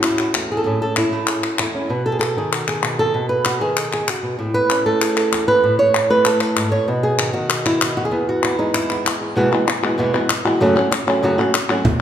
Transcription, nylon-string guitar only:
0.00 0.34 A2 medium
0.00 0.64 A3 medium
0.00 0.64 C#4 soft
0.00 0.50 E4 medium
0.00 0.18 F#4 medium
0.19 0.50 F#4 medium
0.35 0.66 E2 soft
0.52 0.63 G#4 medium
0.57 0.81 A4 medium
0.64 1.59 A2 medium
0.64 1.73 C#4 soft
0.64 1.13 G#4 medium
0.82 0.97 A4 medium
0.98 1.44 E4 medium
1.12 1.88 A3 medium
1.12 1.28 F#4 medium
1.28 1.43 G#4 medium
1.43 1.90 F#4 medium
1.59 1.89 E2 soft
1.59 1.90 E4 medium
1.75 1.88 C#4 soft
1.90 2.36 B2 medium
1.90 2.05 B4 soft
2.06 2.18 A4 medium
2.12 2.36 G#4 medium
2.19 2.67 A4 medium
2.37 3.13 D#3 medium
2.37 2.53 G#4 medium
2.53 2.68 F#4 medium
2.68 3.30 G#4 medium
2.83 3.12 B2 medium
2.99 3.29 A4 medium
3.14 3.61 B2 medium
3.29 3.77 B4 medium
3.46 3.61 F#4 medium
3.61 4.07 D#3 medium
3.61 3.92 G#4 medium
3.77 4.23 A4 medium
3.94 4.09 G#4 medium
4.07 4.22 C#3 medium
4.07 4.39 F#4 medium
4.23 4.38 B2 medium
4.39 5.32 A2 medium
4.39 5.01 E4 soft
4.54 4.85 B4 loud
4.71 5.62 C#4 soft
4.86 5.62 A3 medium
4.86 5.16 A4 medium
5.01 5.48 G#4 medium
5.17 5.48 A4 medium
5.32 5.63 E2 medium
5.48 5.78 B4 loud
5.64 6.71 A2 medium
5.79 6.10 C#5 loud
6.10 6.86 A3 medium
6.10 6.39 B4 loud
6.26 6.72 A4 medium
6.41 6.71 B4 medium
6.56 6.72 G#2 medium
6.72 6.87 A2 medium
6.72 6.87 C#5 loud
6.88 7.34 B2 medium
6.88 7.65 B4 soft
7.03 7.33 G#4 loud
7.19 7.33 D#3 soft
7.33 8.10 D#3 medium
7.33 7.96 F#4 loud
7.66 7.97 E4 medium
7.81 8.10 B2 medium
7.97 8.04 F#4 medium
8.05 8.28 G#4 medium
8.11 9.04 E2 medium
8.11 8.89 B3 medium
8.29 8.58 F#4 medium
8.44 8.73 E4 medium
8.58 9.34 G#3 medium
8.58 9.05 D#4 medium
8.74 9.21 E4 medium
8.90 9.35 B3 soft
9.05 9.34 E2 medium
9.21 9.35 G#4 soft
9.36 9.51 E2 medium
9.36 9.51 B2 medium
9.36 9.51 E3 medium
9.36 9.52 G#3 medium
9.36 9.51 B3 medium
9.36 9.50 F#4 medium
9.51 9.67 E3 soft
9.51 9.67 G#3 soft
9.51 9.67 B3 medium
9.51 9.67 F#4 soft
9.67 muted nylon-string guitar stroke medium
9.83 9.97 E3 soft
9.83 9.98 G#3 medium
9.83 9.98 B3 medium
9.83 9.98 F#4 medium
9.98 10.13 E2 medium
9.98 10.13 B2 medium
9.98 10.13 E3 medium
9.98 10.14 G#3 medium
9.98 10.13 B3 medium
9.98 10.12 F#4 medium
10.14 10.29 E3 soft
10.14 10.30 G#3 soft
10.14 10.29 B3 medium
10.14 10.29 F#4 medium
10.30 muted nylon-string guitar stroke medium
10.45 10.61 E3 soft
10.45 10.61 G#3 medium
10.45 10.60 B3 medium
10.45 10.60 F#4 medium
10.60 10.75 F#2 medium
10.60 10.76 C#3 medium
10.60 10.76 F#3 medium
10.60 10.76 A3 medium
10.60 10.75 C#4 medium
10.60 10.74 F#4 medium
10.76 10.90 F#3 soft
10.76 10.91 A3 soft
10.76 10.91 C#4 soft
10.76 10.91 F#4 medium
10.91 muted nylon-string guitar stroke medium
11.07 11.22 F#3 medium
11.07 11.23 A3 soft
11.07 11.22 C#4 medium
11.07 11.22 F#4 medium
11.23 11.38 F#2 medium
11.23 11.38 C#3 medium
11.23 11.38 F#3 medium
11.23 11.38 A3 medium
11.23 11.38 C#4 medium
11.23 11.37 F#4 medium
11.38 11.53 F#3 soft
11.38 11.53 A3 medium
11.38 11.53 C#4 medium
11.38 11.53 F#4 medium
11.54 muted nylon-string guitar stroke medium
11.69 11.85 F#3 medium
11.69 11.85 A3 medium
11.69 11.85 C#4 medium
11.69 11.84 F#4 medium
11.85 muted nylon-string guitar stroke medium

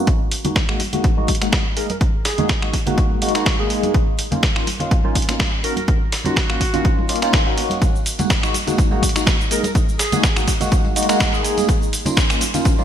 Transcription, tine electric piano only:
0.45 0.56 G#3 medium
0.45 0.56 A#3 medium
0.45 0.56 D#4 medium
0.45 0.56 F#4 medium
0.68 0.80 G#3 medium
0.68 0.80 A#3 medium
0.68 0.80 D#4 medium
0.68 0.80 F#4 medium
0.93 1.14 G#3 medium
0.93 1.14 A#3 medium
0.93 1.14 D#4 medium
0.93 1.15 F#4 medium
1.17 1.29 G#3 medium
1.17 1.29 A#3 medium
1.17 1.29 D#4 medium
1.17 1.29 F#4 loud
1.42 1.61 G#3 medium
1.42 1.61 A#3 medium
1.42 1.61 D#4 medium
1.42 1.61 F#4 medium
1.76 1.90 G#3 medium
1.76 1.90 A#3 medium
1.76 1.90 D#4 medium
1.76 1.90 G#4 medium
2.38 2.49 G#3 medium
2.38 2.50 A#3 medium
2.38 2.50 D#4 medium
2.38 2.50 F#4 medium
2.62 2.74 G#3 medium
2.62 2.74 A#3 medium
2.62 2.74 D#4 medium
2.62 2.74 F#4 loud
2.86 3.19 G#3 medium
2.86 3.19 A#3 medium
2.86 3.20 D#4 medium
2.86 3.20 F#4 loud
3.22 3.32 G#3 medium
3.22 3.32 A#3 medium
3.22 3.32 D#4 medium
3.22 3.32 F#4 medium
3.35 3.54 G#3 medium
3.35 3.54 A#3 medium
3.35 3.54 D#4 medium
3.35 3.54 F#4 loud
3.59 3.93 G#3 medium
3.59 3.93 A#3 medium
3.59 3.93 D#4 medium
3.59 3.94 G#4 loud
4.31 4.43 A#3 medium
4.31 4.43 C#4 medium
4.31 4.43 D#4 medium
4.31 4.43 F4 medium
4.56 4.67 A#3 medium
4.56 4.67 C#4 medium
4.56 4.67 D#4 medium
4.56 4.68 F4 loud
4.80 5.01 A#3 medium
4.80 5.01 C#4 medium
4.80 5.01 D#4 medium
4.80 5.02 F4 medium
5.04 5.16 A#3 loud
5.04 5.16 C#4 medium
5.04 5.16 D#4 medium
5.04 5.16 F4 loud
5.28 5.48 A#3 medium
5.28 5.48 C#4 medium
5.28 5.48 D#4 medium
5.28 5.48 F4 medium
5.63 5.77 A#3 medium
5.63 5.77 C#4 medium
5.63 5.77 D#4 medium
5.63 5.77 F#4 medium
6.25 6.37 A#3 medium
6.25 6.37 C#4 medium
6.25 6.37 D#4 medium
6.25 6.37 F4 medium
6.49 6.61 A#3 medium
6.49 6.61 C#4 medium
6.49 6.61 D#4 medium
6.49 6.61 F4 loud
6.73 7.06 A#3 medium
6.73 7.06 C#4 medium
6.73 7.06 D#4 medium
6.73 7.07 F4 loud
7.08 7.19 A#3 medium
7.08 7.19 C#4 medium
7.08 7.19 D#4 medium
7.08 7.19 F4 loud
7.22 7.41 A#3 medium
7.22 7.41 C#4 medium
7.22 7.42 D#4 medium
7.22 7.42 F4 loud
7.46 7.80 A#3 loud
7.46 7.80 C#4 medium
7.46 7.81 D#4 medium
7.46 7.81 F#4 loud
8.19 8.30 G#3 medium
8.19 8.30 A#3 medium
8.19 8.30 D#4 medium
8.19 8.31 F#4 medium
8.43 8.54 G#3 loud
8.43 8.54 A#3 medium
8.43 8.54 D#4 medium
8.43 8.55 F#4 loud
8.67 8.88 G#3 medium
8.67 8.88 A#3 medium
8.67 8.88 D#4 medium
8.67 8.89 F#4 medium
8.91 9.03 G#3 medium
8.91 9.03 A#3 medium
8.91 9.03 D#4 medium
8.91 9.03 F#4 loud
9.15 9.35 G#3 medium
9.15 9.35 A#3 medium
9.15 9.35 D#4 medium
9.15 9.35 F#4 medium
9.51 9.64 G#3 medium
9.51 9.64 A#3 medium
9.51 9.64 D#4 medium
9.51 9.65 G#4 medium
10.12 10.24 G#3 medium
10.12 10.24 A#3 medium
10.12 10.24 D#4 medium
10.12 10.24 F#4 loud
10.36 10.48 G#3 medium
10.36 10.48 A#3 medium
10.36 10.48 D#4 medium
10.36 10.48 F#4 loud
10.61 10.93 G#3 medium
10.61 10.94 A#3 medium
10.61 10.94 D#4 medium
10.61 10.94 F#4 loud
10.96 11.06 G#3 medium
10.96 11.06 A#3 medium
10.96 11.06 D#4 medium
10.96 11.06 F#4 loud
11.09 11.28 G#3 medium
11.09 11.28 A#3 medium
11.09 11.29 D#4 medium
11.09 11.29 F#4 loud
11.33 11.67 G#3 medium
11.33 11.67 A#3 medium
11.33 11.67 D#4 medium
11.33 11.68 G#4 loud
12.06 12.17 A#3 medium
12.06 12.17 C#4 medium
12.06 12.17 D#4 medium
12.06 12.17 F4 medium
12.30 12.41 A#3 medium
12.30 12.41 C#4 medium
12.30 12.42 D#4 medium
12.30 12.42 F4 loud
12.54 12.75 A#3 medium
12.54 12.75 C#4 medium
12.54 12.76 D#4 medium
12.54 12.76 F4 medium
12.78 12.84 A#3 loud
12.78 12.84 C#4 medium
12.78 12.84 D#4 medium
12.78 12.84 F4 loud

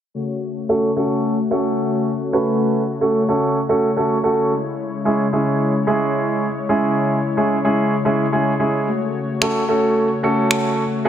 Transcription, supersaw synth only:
0.14 11.09 C#3 medium
0.14 4.47 A3 medium
0.14 4.47 F#4 medium
0.14 11.09 C#5 medium
4.51 8.84 G#3 medium
4.51 8.84 E4 medium
8.87 11.09 A3 medium
8.87 11.09 F#4 medium

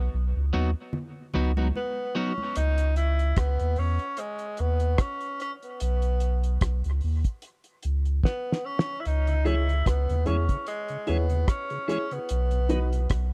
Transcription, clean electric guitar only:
0.53 0.69 F#3 medium
0.53 0.69 B3 medium
0.53 0.70 D#4 medium
0.53 0.70 F#4 loud
1.34 1.50 F#3 medium
1.34 1.51 B3 medium
1.34 1.51 D#4 loud
1.34 1.51 F#4 loud
1.57 1.68 F#3 medium
1.57 1.67 B3 medium
1.57 1.67 D#4 medium
1.57 1.67 F#4 medium
2.15 2.31 F#3 medium
2.15 2.32 B3 medium
2.15 2.32 D#4 medium
2.15 2.32 F#4 medium

